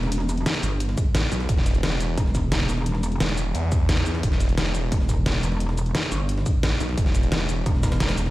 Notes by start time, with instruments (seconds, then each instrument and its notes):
Already playing: wobble bass E1
0.03 snare
0.12 closed hi-hat
0.20 snare
0.29 closed hi-hat, shaker
0.38 closed hi-hat
0.46 snare, closed hi-hat
0.55 closed hi-hat
0.63 wobble bass G1, closed hi-hat, shaker
0.80 closed hi-hat
0.89 snare
0.97 kick, closed hi-hat, shaker
1.15 snare, closed hi-hat, open hi-hat
1.32 detuned saw bass B1, snare, closed hi-hat, open hi-hat, shaker
1.40 snare
1.49 detuned saw bass E1, kick, closed hi-hat
1.57 snare
1.66 snare, closed hi-hat, shaker
1.75 closed hi-hat
1.83 detuned saw bass E1, snare, closed hi-hat
1.92 closed hi-hat
2.00 closed hi-hat, shaker
2.17 wobble bass E1, kick, closed hi-hat
2.26 snare
2.35 kick, snare, closed hi-hat, shaker
2.52 snare, closed hi-hat
2.69 wobble bass E1, closed hi-hat, open hi-hat, shaker
2.78 snare
2.86 closed hi-hat
2.95 snare
3.03 closed hi-hat, shaker
3.12 closed hi-hat
3.20 detuned saw bass E1, snare, closed hi-hat
3.29 closed hi-hat
3.38 closed hi-hat, shaker
3.55 detuned saw bass E2, closed hi-hat
3.72 kick, closed hi-hat, shaker
3.89 snare, closed hi-hat, open hi-hat
3.98 closed hi-hat
4.06 snare, closed hi-hat, open hi-hat, shaker
4.15 snare
4.23 detuned saw bass E1, kick, closed hi-hat
4.32 snare
4.40 snare, closed hi-hat, shaker
4.49 closed hi-hat
4.58 detuned saw bass E1, snare, closed hi-hat
4.66 closed hi-hat
4.75 closed hi-hat, shaker
4.92 wobble bass E1, kick, closed hi-hat
5.00 snare
5.09 kick, snare, closed hi-hat, shaker
5.26 snare, closed hi-hat
5.43 wobble bass E1, closed hi-hat, open hi-hat, shaker
5.52 snare
5.60 closed hi-hat
5.69 snare
5.78 closed hi-hat, shaker
5.86 closed hi-hat
5.95 snare, closed hi-hat
6.03 closed hi-hat
6.12 wobble bass G1, closed hi-hat, shaker
6.29 closed hi-hat
6.38 snare
6.46 kick, closed hi-hat, shaker
6.63 snare, closed hi-hat, open hi-hat
6.80 detuned saw bass B1, snare, closed hi-hat, open hi-hat, shaker
6.89 snare
6.97 detuned saw bass E1, kick, closed hi-hat
7.06 snare
7.15 snare, closed hi-hat, shaker
7.23 closed hi-hat
7.32 detuned saw bass E1, snare, closed hi-hat
7.40 closed hi-hat
7.49 closed hi-hat, shaker
7.66 wobble bass E1, kick, closed hi-hat
7.75 snare
7.83 kick, snare, closed hi-hat, shaker
7.92 snare, closed hi-hat
8.00 snare, closed hi-hat
8.09 snare, closed hi-hat
8.18 wobble bass E1, closed hi-hat, open hi-hat, shaker
8.26 snare